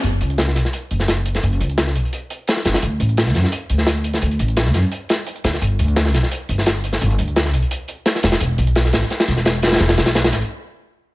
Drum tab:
HH |x---x-x-x---x---x---x---x---x-x-|x-x-x-x-x---x-x-x---x---x---x-x-|x---x-x-x---x---x---x---x---x-x-|x-x-x-x-x---x-x-x---x---x-x-x-x-|
SD |--------o-o-o-o-------o-o-----o-|--------o-o-------------o-o-o-o-|--------o-o-o-o-------o-o-----o-|--------o-o-o-------o-------o-o-|

HH |x---x-x-x---x---x---x---x---x-x-|x-x-x-x-x---x-x-x---x---x---x-x-|x---x-x-x---x---x-x-x-x-x---xxxx|x-x-x-x-x-x-x-x-----------------|
SD |--------o-o-o-o-------o-o-----o-|--------o-o-------------o-o-o-o-|--------o-o-o-o-o-o-o-o-o---oooo|o-o-o-o-o-o-o-------------------|